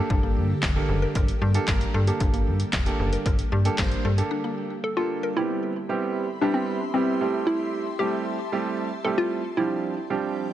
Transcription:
0.00 5.32 D3 medium
0.00 5.33 G3 medium
0.00 0.50 A#3 medium
0.00 5.33 A#3 medium
0.00 0.50 D4 medium
0.00 0.50 G4 medium
0.00 5.33 G4 medium
0.00 0.50 A4 medium
0.00 5.32 A4 medium
0.10 0.38 G1 loud
0.10 0.18 D4 medium
0.10 kick loud
0.23 0.31 A#3 medium
0.37 0.54 G2 loud
0.63 0.80 F1 medium
0.63 kick loud
0.63 snare medium
0.63 clap loud
0.76 1.29 A#3 medium
0.76 1.29 D4 medium
0.76 1.29 G4 medium
0.76 1.29 A4 loud
0.89 1.06 F#1 medium
1.02 1.10 A#4 medium
1.15 1.32 G1 loud
1.15 1.23 A#4 loud
1.15 kick loud
1.15 closed hi-hat medium
1.28 closed hi-hat medium
1.42 1.59 G2 medium
1.42 1.50 G4 medium
1.54 1.64 A#3 loud
1.54 1.64 D4 medium
1.54 1.64 G4 medium
1.54 1.64 A4 loud
1.54 closed hi-hat medium
1.68 1.85 G1 loud
1.68 1.94 A#3 medium
1.68 1.76 A#3 medium
1.68 1.94 G4 medium
1.68 kick loud
1.68 snare loud
1.68 clap loud
1.68 closed hi-hat medium
1.81 closed hi-hat medium
1.94 2.11 G2 loud
1.94 2.02 A4 medium
2.07 2.60 A#3 medium
2.07 2.60 D4 medium
2.07 2.60 G4 medium
2.07 2.15 G4 medium
2.07 2.60 A4 medium
2.07 closed hi-hat soft
2.20 2.48 G1 loud
2.20 2.28 D4 medium
2.20 kick loud
2.20 closed hi-hat medium
2.34 2.42 A#3 medium
2.34 closed hi-hat soft
2.47 2.64 G2 loud
2.60 closed hi-hat soft
2.73 2.90 F1 loud
2.73 kick loud
2.73 snare medium
2.73 clap loud
2.73 closed hi-hat medium
2.86 3.39 A#3 medium
2.86 3.39 D4 medium
2.86 3.39 G4 medium
2.86 3.39 A4 loud
2.86 closed hi-hat medium
2.99 3.17 F#1 medium
3.13 3.21 A#4 medium
3.13 closed hi-hat medium
3.26 3.43 G1 loud
3.26 3.34 A#4 loud
3.26 kick loud
3.26 closed hi-hat medium
3.39 closed hi-hat medium
3.52 3.69 G2 medium
3.52 3.60 G4 medium
3.65 3.74 A#3 medium
3.65 3.74 D4 medium
3.65 3.74 G4 medium
3.65 3.74 A4 loud
3.65 closed hi-hat medium
3.78 3.95 G1 loud
3.78 4.05 A#3 medium
3.78 3.86 A#3 medium
3.78 4.05 D4 medium
3.78 4.05 G4 medium
3.78 kick loud
3.78 snare loud
3.78 clap loud
3.78 closed hi-hat medium
3.92 closed hi-hat soft
4.05 4.22 G2 medium
4.05 4.13 A4 medium
4.18 4.71 A#3 medium
4.18 4.71 D4 medium
4.18 4.26 G4 medium
4.18 4.71 G4 medium
4.18 4.71 A4 medium
4.18 closed hi-hat medium
4.31 4.39 D4 medium
4.44 4.52 A#3 medium
4.84 4.96 A4 loud
4.97 5.36 A#3 medium
4.97 5.36 D4 medium
4.97 5.34 F4 loud
4.97 5.36 G4 medium
4.97 5.37 A4 loud
5.23 5.31 A#4 medium
5.36 5.72 G3 medium
5.36 5.72 B3 medium
5.36 5.72 C4 medium
5.36 6.38 E4 loud
5.36 5.72 E4 medium
5.36 9.54 G4 medium
5.36 5.72 G4 medium
5.36 9.53 E5 medium
5.36 7.19 B5 medium
5.36 9.53 C6 medium
5.89 6.24 G3 medium
5.89 6.24 B3 medium
5.89 6.24 C4 medium
5.89 6.24 E4 medium
5.89 6.24 G4 medium
6.41 6.77 G3 medium
6.41 6.77 B3 medium
6.41 6.77 C4 medium
6.41 6.54 D4 medium
6.41 6.77 E4 medium
6.41 6.77 G4 loud
6.54 6.91 C4 loud
6.94 7.19 G3 medium
6.94 7.21 B3 medium
6.94 7.48 C4 loud
6.94 7.19 C4 medium
6.94 7.20 E4 medium
6.94 7.20 G4 medium
7.21 7.84 G3 medium
7.21 7.84 A3 medium
7.21 7.84 C4 medium
7.21 7.84 E4 medium
7.21 7.84 G4 medium
7.21 9.55 A5 medium
7.47 8.01 E4 loud
7.99 8.35 G3 medium
7.99 8.35 A3 medium
7.99 8.35 C4 medium
7.99 8.35 E4 medium
7.99 9.08 G4 loud
7.99 8.35 G4 medium
8.52 8.87 G3 medium
8.52 8.87 A3 medium
8.52 8.88 C4 medium
8.52 8.88 E4 medium
8.52 8.88 G4 medium
9.05 9.40 G3 medium
9.05 9.40 A3 medium
9.05 9.40 C4 medium
9.05 9.40 E4 medium
9.05 9.40 G4 medium
9.05 9.11 A4 loud
9.18 9.59 F4 loud
9.57 9.93 F3 medium
9.57 10.53 F3 medium
9.57 9.93 G3 medium
9.57 9.93 C4 medium
9.57 9.93 D4 medium
9.57 10.53 E4 loud
9.57 9.93 G4 medium
9.57 10.53 D5 medium
9.57 10.53 G5 medium
10.10 10.45 F3 medium
10.10 10.45 G3 medium
10.10 10.45 C4 medium
10.10 10.45 D4 medium
10.10 10.45 G4 medium

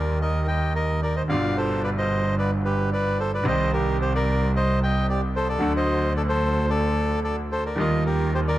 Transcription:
0.00 1.19 D#2 medium
0.00 1.19 D#3 medium
0.00 1.18 G3 soft
0.00 1.19 A#3 soft
0.00 1.20 G4 medium
0.00 0.19 A#4 medium
0.00 0.18 D5 medium
0.22 0.47 A#4 medium
0.22 0.47 D#5 medium
0.48 0.74 D#5 medium
0.48 0.73 G5 medium
0.75 1.01 A#4 medium
0.75 1.01 D#5 medium
1.03 1.16 A#4 medium
1.03 1.15 D5 medium
1.16 1.23 C5 soft
1.16 1.22 D#5 medium
1.28 3.35 G1 medium
1.28 3.34 G2 medium
1.28 3.35 B2 soft
1.28 3.34 D3 medium
1.28 3.34 G3 soft
1.28 1.55 D5 medium
1.28 1.57 F5 medium
1.32 3.36 F4 medium
1.57 1.82 A4 medium
1.57 1.82 C5 medium
1.83 1.90 B4 medium
1.83 1.90 D5 medium
1.98 2.35 C5 medium
1.98 2.35 D#5 medium
2.39 2.51 B4 medium
2.39 2.50 D5 medium
2.65 2.90 G4 medium
2.65 2.90 B4 medium
2.93 3.18 B4 medium
2.93 3.20 D5 medium
3.19 3.32 A4 medium
3.19 3.31 C5 medium
3.34 3.46 B4 medium
3.34 3.47 D5 medium
3.43 5.49 C2 medium
3.43 5.50 C2 medium
3.43 5.49 C3 medium
3.43 5.48 D#3 medium
3.43 5.49 G3 soft
3.43 5.50 C4 soft
3.43 5.50 G4 medium
3.43 3.71 D#5 medium
3.49 3.72 C5 medium
3.73 3.98 G4 medium
3.73 3.97 A#4 medium
4.02 4.13 G4 medium
4.02 4.13 C5 medium
4.15 4.52 A#4 medium
4.15 4.51 D5 medium
4.56 4.80 C5 medium
4.56 4.79 D#5 medium
4.83 5.07 D#5 medium
4.83 5.07 G5 medium
5.10 5.22 G4 medium
5.10 5.21 D5 medium
5.36 5.48 A4 medium
5.36 5.48 C5 medium
5.49 5.73 A4 medium
5.49 5.73 D5 medium
5.59 7.67 D2 medium
5.59 7.67 D3 medium
5.59 7.66 F#3 soft
5.59 7.67 A3 soft
5.59 7.68 F#4 medium
5.77 6.13 C5 medium
5.77 6.13 D#5 medium
6.16 6.23 A4 medium
6.16 6.22 D5 medium
6.29 6.66 A4 medium
6.29 6.70 C5 medium
6.70 7.20 A4 medium
6.70 7.20 D5 medium
7.24 7.36 A4 medium
7.24 7.36 D5 medium
7.52 7.64 A4 medium
7.52 7.64 C5 medium
7.66 7.78 A#4 medium
7.66 7.79 D5 medium
7.77 8.59 D#2 medium
7.77 8.59 D#3 medium
7.77 8.59 G3 soft
7.77 8.59 A#3 soft
7.77 8.59 F4 medium
7.77 8.04 A#4 medium
7.77 8.04 D#5 medium
8.06 8.31 G4 medium
8.06 8.34 A#4 medium
8.35 8.40 G4 medium
8.35 8.40 C5 medium
8.48 8.59 A#4 medium
8.48 8.59 D5 medium

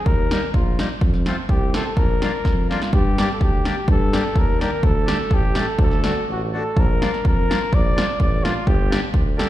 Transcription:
0.06 0.37 D#2 medium
0.06 0.53 A#4 loud
0.06 kick medium
0.30 0.41 G3 medium
0.30 0.41 A#3 medium
0.30 0.41 D#4 medium
0.30 snare medium
0.53 0.85 A#1 medium
0.53 0.87 F4 medium
0.53 kick medium
0.78 0.89 G3 medium
0.78 0.89 A#3 soft
0.78 0.89 D#4 medium
0.78 snare medium
1.01 1.32 F2 medium
1.01 kick medium
1.14 snare soft
1.26 1.36 A3 medium
1.26 1.37 C4 medium
1.26 1.37 F4 medium
1.26 snare medium
1.49 1.80 C2 medium
1.49 1.76 G4 medium
1.49 kick medium
1.73 1.84 A3 medium
1.73 1.84 C4 medium
1.73 1.85 F4 medium
1.73 1.84 A4 medium
1.73 snare medium
1.85 1.97 A4 medium
1.96 2.28 A#1 medium
1.96 2.70 A#4 medium
1.96 kick medium
2.22 2.32 A#3 medium
2.22 2.32 D4 soft
2.22 2.32 F4 medium
2.22 snare medium
2.45 2.76 F2 medium
2.45 kick medium
2.45 snare soft
2.69 2.80 A#3 medium
2.69 2.80 D4 medium
2.69 2.81 F4 medium
2.69 2.92 F4 medium
2.69 snare soft
2.82 snare soft
2.93 3.24 G2 loud
2.93 3.32 G4 medium
2.93 kick medium
3.18 3.28 A#3 medium
3.18 3.29 D4 medium
3.18 3.29 G4 medium
3.18 snare medium
3.33 3.44 A4 medium
3.41 3.72 D2 medium
3.41 3.89 G4 medium
3.41 kick medium
3.64 3.75 A#3 medium
3.64 3.76 D4 soft
3.64 3.76 G4 medium
3.64 snare medium
3.88 4.19 G2 loud
3.88 4.40 A4 medium
3.88 kick medium
4.12 4.23 A#3 medium
4.12 4.23 D4 medium
4.12 4.23 G4 medium
4.12 snare medium
4.36 4.67 D#2 medium
4.36 4.62 A#4 medium
4.36 kick medium
4.59 4.70 A#3 medium
4.59 4.70 D4 soft
4.59 4.71 G4 medium
4.59 snare medium
4.63 4.86 A#4 medium
4.83 5.14 D2 medium
4.83 5.36 A4 medium
4.83 kick medium
5.06 5.17 A3 medium
5.06 5.18 D4 medium
5.06 5.18 G4 medium
5.06 snare medium
5.30 5.62 A1 medium
5.30 5.62 G4 loud
5.30 kick medium
5.55 5.66 A3 medium
5.55 5.66 D4 medium
5.55 5.66 G4 medium
5.55 snare medium
5.61 5.81 A4 medium
5.79 6.10 D2 loud
5.79 6.26 A4 medium
5.79 kick medium
5.92 snare soft
6.03 6.14 A3 medium
6.03 6.14 D4 medium
6.03 6.14 F#4 medium
6.03 snare medium
6.28 6.59 A1 medium
6.28 6.42 F#4 medium
6.52 6.63 A3 medium
6.52 6.63 D4 medium
6.52 6.63 F#4 medium
6.57 6.81 A4 medium
6.77 7.08 A#1 loud
6.77 7.26 A#4 medium
6.77 kick medium
7.00 7.11 A#3 medium
7.00 7.11 D4 medium
7.00 7.12 F4 medium
7.00 snare medium
7.14 snare soft
7.25 7.56 F2 medium
7.25 7.76 A#4 medium
7.25 kick medium
7.48 7.59 A#3 medium
7.48 7.59 D4 medium
7.48 7.60 F4 medium
7.48 snare medium
7.73 8.03 A#1 medium
7.73 8.20 D5 loud
7.73 kick medium
7.96 8.06 A#3 medium
7.96 8.06 D4 medium
7.96 8.06 F4 medium
7.96 snare medium
8.20 8.50 A1 medium
8.20 8.45 D5 loud
8.20 kick medium
8.43 8.53 A#3 medium
8.43 8.54 D4 medium
8.43 8.68 F4 medium
8.43 8.54 F4 medium
8.43 snare medium
8.67 8.97 G1 loud
8.67 9.11 G4 loud
8.67 kick medium
8.89 9.00 A#3 medium
8.89 9.00 D4 medium
8.89 9.01 G4 medium
8.89 snare medium
9.14 9.44 D2 medium
9.14 kick medium
9.37 9.47 A#3 medium
9.37 9.47 D4 medium
9.37 9.48 G4 medium
9.37 9.48 A4 medium
9.37 snare medium

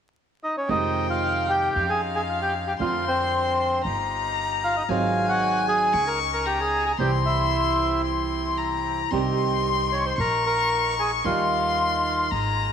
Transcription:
0.43 0.56 D#4 soft
0.43 0.56 D#5 medium
0.57 0.69 C#4 soft
0.57 0.70 C#5 medium
0.69 1.70 F2 medium
0.69 1.74 C3 medium
0.69 1.74 D#3 medium
0.69 1.70 G#3 medium
0.69 1.75 G#3 medium
0.69 1.75 C4 medium
0.69 1.70 D#4 soft
0.69 1.07 D#4 medium
0.69 1.70 F4 medium
0.69 2.25 F4 medium
0.69 1.07 D#5 medium
0.69 1.71 G5 medium
1.10 1.46 F4 medium
1.10 1.51 F5 medium
1.49 1.86 G4 medium
1.49 1.90 G5 medium
1.75 2.75 F2 medium
1.75 2.75 C#4 medium
1.75 2.75 D#4 medium
1.75 2.75 F4 medium
1.75 2.77 F5 medium
1.89 2.01 G#4 medium
1.89 2.01 G#5 medium
2.15 2.21 G#4 medium
2.15 2.22 G#5 medium
2.29 2.41 F4 soft
2.29 2.41 F5 medium
2.42 2.53 G4 medium
2.42 2.54 G5 medium
2.67 2.73 G4 medium
2.67 2.74 G5 medium
2.79 3.80 F2 medium
2.79 3.84 D3 medium
2.79 3.80 C4 medium
2.79 3.84 C4 medium
2.79 3.80 D4 soft
2.79 3.05 F4 medium
2.79 3.85 F4 medium
2.79 3.80 A#4 medium
2.79 3.05 F5 medium
2.79 3.81 C6 medium
3.07 3.82 C4 medium
3.07 3.82 C5 medium
3.85 4.84 G1 medium
3.85 4.84 D#4 medium
3.85 4.84 F4 medium
3.85 4.84 G4 medium
3.85 4.91 A#5 medium
4.64 4.76 F4 soft
4.64 4.76 F5 medium
4.77 4.83 D#4 soft
4.77 4.83 D#5 medium
4.89 5.89 G#1 medium
4.89 5.93 D#3 medium
4.89 5.93 F#3 medium
4.89 5.89 F#3 medium
4.89 5.89 C4 soft
4.89 5.94 C4 medium
4.89 5.94 D#4 medium
4.89 5.27 F4 medium
4.89 5.89 G#4 medium
4.89 5.94 G#4 medium
4.89 5.30 F5 medium
4.89 5.95 G#5 medium
5.29 5.65 F#4 medium
5.29 5.65 F#5 medium
5.68 6.05 G#4 medium
5.68 6.09 G#5 medium
5.93 6.94 C#2 medium
5.93 6.95 C#4 medium
5.93 6.95 D#4 medium
5.93 6.95 G#4 medium
5.93 6.47 C#6 medium
6.07 6.19 A#4 medium
6.07 6.19 A#5 medium
6.33 6.46 A#4 medium
6.33 6.46 A#5 medium
6.46 6.59 G4 soft
6.46 6.59 G5 medium
6.46 6.99 A#5 medium
6.60 6.85 G#4 medium
6.60 6.84 G#5 medium
6.86 6.92 G#4 soft
6.86 6.92 G#5 medium
6.98 9.02 C2 medium
6.98 9.09 C3 medium
6.98 9.11 E3 medium
6.98 9.11 G3 medium
6.98 9.02 C4 medium
6.98 9.11 C4 medium
6.98 9.02 E4 medium
6.98 9.12 E4 medium
6.98 7.12 G4 soft
6.98 9.02 G4 medium
6.98 7.11 G5 medium
6.98 8.04 C6 medium
7.26 8.02 E4 medium
7.26 8.02 E5 medium
8.05 8.59 C6 medium
8.58 9.12 A#5 medium
9.11 10.14 C2 medium
9.11 10.17 C3 medium
9.11 10.18 D#3 medium
9.11 10.18 G3 medium
9.11 10.14 C4 medium
9.11 10.18 C4 medium
9.11 10.14 D#4 soft
9.11 10.14 G4 medium
9.11 10.19 G4 medium
9.11 10.18 C6 medium
9.92 10.05 C#5 medium
9.92 10.06 C#6 medium
10.06 10.18 C5 soft
10.06 10.19 C6 medium
10.18 11.20 A#1 medium
10.18 11.20 A#3 medium
10.18 11.20 D#4 medium
10.18 11.20 F4 medium
10.18 10.44 A#4 medium
10.18 10.45 A#5 medium
10.18 11.26 C#6 medium
10.46 10.95 A#4 medium
10.46 11.01 A#5 medium
10.99 11.11 G#4 soft
10.99 11.11 G#5 medium
11.24 12.26 D#2 medium
11.24 12.30 D#3 medium
11.24 12.30 G3 medium
11.24 12.26 G3 soft
11.24 12.27 D#4 soft
11.24 12.31 D#4 medium
11.24 12.27 F4 medium
11.24 12.28 F4 soft
11.24 12.31 F4 medium
11.24 12.28 F5 medium
11.24 12.32 C6 medium
12.31 12.73 G#1 medium
12.31 12.73 A#3 medium
12.31 12.73 D#4 medium
12.31 12.73 G#4 medium
12.31 12.73 A#5 medium

